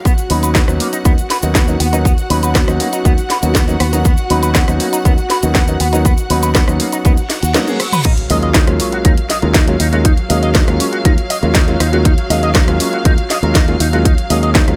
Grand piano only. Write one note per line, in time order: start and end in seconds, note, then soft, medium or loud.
0.30 0.65 F#3 medium
0.30 0.65 B3 medium
0.30 0.65 C#4 medium
0.30 0.65 D#4 medium
0.68 1.02 F#3 medium
0.68 1.02 B3 medium
0.68 1.03 C#4 medium
0.68 1.03 D#4 medium
1.05 1.12 F#3 medium
1.05 1.12 A#3 medium
1.05 1.12 B3 medium
1.05 1.12 C#4 medium
1.05 1.12 D#4 medium
1.42 1.53 F#3 medium
1.42 1.53 A#3 medium
1.42 1.53 B3 medium
1.42 1.53 C#4 medium
1.42 1.53 D#4 medium
1.67 1.74 F#3 medium
1.67 1.74 A#3 medium
1.67 1.74 B3 medium
1.67 1.74 C#4 medium
1.67 1.75 D#4 medium
1.93 2.03 F#3 medium
1.93 2.03 A#3 medium
1.93 2.03 B3 medium
1.93 2.03 C#4 medium
1.93 2.03 D#4 medium
2.30 2.65 F#3 medium
2.30 2.65 B3 medium
2.30 2.65 C#4 medium
2.30 2.65 D#4 medium
2.67 3.02 F#3 medium
2.67 3.02 B3 medium
2.67 3.02 C#4 medium
2.67 3.02 D#4 medium
3.05 3.12 F#3 medium
3.05 3.12 A#3 medium
3.05 3.12 B3 medium
3.05 3.12 C#4 medium
3.05 3.12 D#4 medium
3.42 3.53 F#3 medium
3.42 3.53 A#3 medium
3.42 3.53 B3 medium
3.42 3.53 C#4 medium
3.42 3.53 D#4 medium
3.67 3.74 F#3 medium
3.67 3.74 A#3 medium
3.67 3.74 B3 medium
3.67 3.75 C#4 medium
3.67 3.75 D#4 medium
3.92 4.03 F#3 medium
3.92 4.03 A#3 medium
3.92 4.03 B3 medium
3.92 4.03 C#4 medium
3.92 4.03 D#4 medium
4.30 4.65 F#3 medium
4.30 4.65 B3 medium
4.30 4.65 C#4 medium
4.30 4.65 D#4 medium
4.68 5.02 F#3 medium
4.68 5.02 B3 medium
4.68 5.03 C#4 medium
4.68 5.03 D#4 medium
5.05 5.12 F#3 medium
5.05 5.12 A#3 medium
5.05 5.12 B3 medium
5.05 5.12 C#4 medium
5.05 5.12 D#4 medium
5.43 5.53 F#3 medium
5.43 5.53 A#3 medium
5.43 5.53 B3 medium
5.43 5.53 C#4 medium
5.43 5.54 D#4 medium
5.68 5.74 F#3 medium
5.68 5.74 A#3 medium
5.68 5.74 B3 medium
5.68 5.75 C#4 medium
5.68 5.75 D#4 medium
5.93 6.03 F#3 medium
5.93 6.03 A#3 medium
5.93 6.03 B3 medium
5.93 6.04 C#4 medium
5.93 6.04 D#4 medium
6.30 6.65 F#3 medium
6.30 6.65 B3 medium
6.30 6.65 C#4 medium
6.30 6.65 D#4 medium
6.68 7.02 F#3 medium
6.68 7.03 B3 medium
6.68 7.03 C#4 medium
6.68 7.03 D#4 medium
7.05 7.12 F#3 medium
7.05 7.12 A#3 medium
7.05 7.12 B3 medium
7.05 7.12 C#4 medium
7.05 7.12 D#4 medium
7.55 7.66 F#3 medium
7.55 7.66 A#3 medium
7.55 7.66 B3 medium
7.55 7.66 C#4 medium
7.55 7.66 D#4 loud
7.68 7.78 F#3 medium
7.68 7.78 A#3 medium
7.68 7.78 B3 medium
7.68 7.78 C#4 medium
7.68 7.78 G#4 medium
8.30 8.65 F#3 medium
8.30 8.65 G#3 medium
8.30 8.65 A#3 medium
8.30 8.65 C#4 medium
8.30 8.65 F4 medium
8.67 9.02 F#3 medium
8.67 9.02 G#3 medium
8.67 9.02 A#3 medium
8.67 9.02 C#4 medium
8.67 9.02 F4 medium
9.04 9.11 F#3 medium
9.04 9.12 G#3 medium
9.04 9.12 A#3 medium
9.04 9.12 C#4 medium
9.04 9.12 F4 medium
9.42 9.53 F#3 medium
9.42 9.53 G#3 medium
9.42 9.53 A#3 medium
9.42 9.53 C#4 medium
9.42 9.53 F4 medium
9.67 9.74 F#3 medium
9.67 9.74 G#3 medium
9.67 9.74 A#3 medium
9.67 9.74 C#4 medium
9.67 9.75 F4 medium
9.92 10.03 F#3 medium
9.92 10.03 G#3 medium
9.92 10.03 A#3 medium
9.92 10.03 C#4 medium
9.92 10.03 F4 medium
10.30 10.65 F#3 medium
10.30 10.65 G#3 medium
10.30 10.65 A#3 medium
10.30 10.65 C#4 medium
10.30 10.65 F5 medium
10.67 11.02 F#3 medium
10.67 11.02 G#3 medium
10.67 11.02 A#3 medium
10.67 11.02 C#4 medium
10.67 11.02 F4 medium
11.05 11.12 F#3 medium
11.05 11.12 G#3 medium
11.05 11.12 A#3 medium
11.05 11.12 C#4 medium
11.05 11.12 F4 medium
11.42 11.53 F#3 medium
11.42 11.53 G#3 medium
11.42 11.53 A#3 medium
11.42 11.53 C#4 medium
11.42 11.53 F4 medium
11.67 11.74 F#3 medium
11.67 11.74 G#3 medium
11.67 11.74 A#3 medium
11.67 11.74 C#4 medium
11.67 11.75 F4 medium
11.93 12.03 F#3 medium
11.93 12.03 G#3 medium
11.93 12.03 A#3 medium
11.93 12.04 C#4 medium
11.93 12.04 F4 medium
12.30 12.65 F#3 medium
12.30 12.65 G#3 medium
12.30 12.65 A#3 medium
12.30 12.65 C#4 medium
12.30 12.65 F5 medium
12.68 13.02 F#3 medium
12.68 13.02 G#3 medium
12.68 13.03 A#3 medium
12.68 13.03 C#4 medium
12.68 13.03 F4 medium
13.05 13.12 F#3 medium
13.05 13.12 G#3 medium
13.05 13.12 A#3 medium
13.05 13.12 C#4 medium
13.05 13.12 F4 medium
13.43 13.53 F#3 medium
13.43 13.53 G#3 medium
13.43 13.54 A#3 medium
13.43 13.54 C#4 medium
13.43 13.54 F4 medium
13.68 13.74 F#3 medium
13.68 13.74 G#3 medium
13.68 13.75 A#3 medium
13.68 13.75 C#4 medium
13.68 13.75 F4 loud
13.93 14.03 F#3 medium
13.93 14.03 G#3 medium
13.93 14.03 A#3 medium
13.93 14.04 C#4 medium
13.93 14.04 F4 medium
14.30 14.65 F#3 medium
14.30 14.65 G#3 medium
14.30 14.65 A#3 medium
14.30 14.65 C#4 medium
14.30 14.65 F5 medium
14.68 14.76 F#3 medium
14.68 14.76 G#3 medium
14.68 14.76 A#3 medium
14.68 14.76 C#4 medium
14.68 14.76 F4 medium